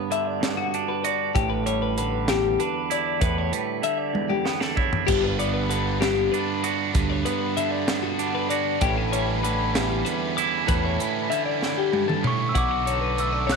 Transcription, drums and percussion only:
0.12 closed hi-hat medium
0.43 snare medium
0.43 closed hi-hat medium
0.74 closed hi-hat soft
1.05 closed hi-hat medium
1.36 kick loud
1.36 closed hi-hat medium
1.67 closed hi-hat medium
1.98 closed hi-hat medium
2.28 snare medium
2.28 closed hi-hat medium
2.60 closed hi-hat medium
2.91 closed hi-hat medium
3.21 kick loud
3.21 closed hi-hat medium
3.53 closed hi-hat medium
3.83 closed hi-hat medium
4.15 high tom soft
4.30 high tom soft
4.46 snare medium
4.61 snare medium
4.77 kick medium
4.93 floor tom medium
5.08 kick loud
5.08 closed hi-hat medium
5.08 crash medium
5.40 closed hi-hat medium
5.71 closed hi-hat medium
6.02 snare medium
6.02 closed hi-hat medium
6.34 closed hi-hat soft
6.64 closed hi-hat medium
6.95 kick loud
6.95 closed hi-hat medium
7.26 closed hi-hat medium
7.57 closed hi-hat medium
7.88 snare loud
7.88 closed hi-hat medium
8.19 closed hi-hat medium
8.50 closed hi-hat medium
8.81 kick loud
8.81 closed hi-hat medium
9.13 closed hi-hat medium
9.44 closed hi-hat medium
9.75 snare loud
9.75 closed hi-hat medium
10.06 closed hi-hat medium
10.38 closed hi-hat medium
10.68 kick loud
10.68 closed hi-hat medium
11.00 closed hi-hat medium
11.32 closed hi-hat medium
11.63 snare medium
11.93 high tom medium
12.09 mid tom medium
12.24 mid tom medium
12.55 kick medium
12.55 closed hi-hat medium
12.87 closed hi-hat medium
13.18 closed hi-hat medium
13.50 snare medium
13.50 closed hi-hat medium

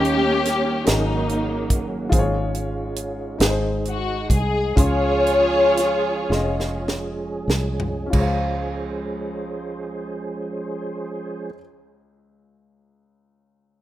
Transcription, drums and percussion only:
0.05 closed hi-hat soft
0.45 snare soft
0.45 closed hi-hat medium
0.86 snare medium
0.86 closed hi-hat medium
1.29 closed hi-hat soft
1.70 kick medium
1.70 closed hi-hat medium
2.12 kick medium
2.12 closed hi-hat medium
2.55 closed hi-hat soft
2.96 closed hi-hat medium
3.40 snare medium
3.40 closed hi-hat medium
3.85 closed hi-hat soft
4.30 kick medium
4.30 closed hi-hat medium
4.77 kick medium
4.77 closed hi-hat medium
5.27 closed hi-hat soft
5.77 snare soft
5.77 closed hi-hat medium
6.32 snare soft
6.60 snare soft
6.88 snare medium
7.50 snare medium
7.80 floor tom medium
8.13 kick medium
8.13 crash medium

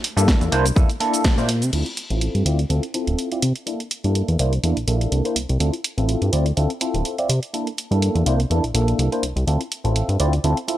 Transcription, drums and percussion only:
0.04 open hi-hat loud
0.17 closed hi-hat soft
0.17 shaker medium
0.28 kick loud
0.28 snare loud
0.28 open hi-hat medium
0.28 shaker medium
0.41 closed hi-hat soft
0.41 shaker soft
0.52 open hi-hat loud
0.66 closed hi-hat soft
0.66 shaker medium
0.76 kick loud
0.76 closed hi-hat medium
0.76 shaker medium
0.90 closed hi-hat soft
0.90 shaker soft
1.00 open hi-hat loud
1.14 closed hi-hat soft
1.14 shaker medium
1.24 kick loud
1.24 snare loud
1.24 closed hi-hat medium
1.24 shaker medium
1.38 closed hi-hat soft
1.38 shaker soft
1.49 open hi-hat loud
1.62 closed hi-hat soft
1.62 shaker medium
1.73 closed hi-hat medium
1.73 crash medium
1.86 closed hi-hat soft
1.97 closed hi-hat medium
2.10 closed hi-hat soft
2.21 closed hi-hat medium
2.35 closed hi-hat soft
2.46 closed hi-hat medium
2.59 closed hi-hat soft
2.70 closed hi-hat medium
2.83 closed hi-hat soft
2.94 closed hi-hat medium
3.07 closed hi-hat soft
3.19 closed hi-hat medium
3.32 closed hi-hat soft
3.42 closed hi-hat loud
3.56 closed hi-hat soft
3.67 closed hi-hat medium
3.80 closed hi-hat soft
3.91 closed hi-hat medium
4.04 closed hi-hat soft
4.15 closed hi-hat medium
4.28 closed hi-hat soft
4.39 closed hi-hat medium
4.53 closed hi-hat soft
4.64 closed hi-hat medium
4.77 closed hi-hat soft
4.88 closed hi-hat medium
5.01 closed hi-hat soft
5.12 closed hi-hat medium
5.25 closed hi-hat soft
5.36 closed hi-hat medium
5.49 closed hi-hat soft
5.60 closed hi-hat medium
5.73 closed hi-hat soft
5.84 closed hi-hat medium
5.98 closed hi-hat soft
6.09 closed hi-hat medium
6.22 closed hi-hat soft
6.33 closed hi-hat medium
6.46 closed hi-hat soft
6.57 closed hi-hat medium
6.70 closed hi-hat soft
6.81 closed hi-hat medium
6.94 closed hi-hat soft
7.05 closed hi-hat medium
7.18 closed hi-hat soft
7.30 closed hi-hat medium
7.43 closed hi-hat soft
7.54 closed hi-hat medium
7.67 closed hi-hat soft
7.78 closed hi-hat medium
7.92 closed hi-hat soft
8.02 closed hi-hat medium
8.16 closed hi-hat soft
8.26 closed hi-hat medium
8.40 closed hi-hat soft
8.51 closed hi-hat medium
8.64 closed hi-hat soft
8.75 closed hi-hat medium
8.88 closed hi-hat soft
8.99 closed hi-hat medium
9.12 closed hi-hat soft
9.23 closed hi-hat medium
9.37 closed hi-hat soft
9.48 closed hi-hat medium
9.61 closed hi-hat soft
9.72 closed hi-hat medium
9.85 closed hi-hat soft
9.96 closed hi-hat medium
10.09 closed hi-hat soft
10.20 closed hi-hat medium
10.33 closed hi-hat soft
10.44 closed hi-hat medium
10.57 closed hi-hat soft
10.68 closed hi-hat medium

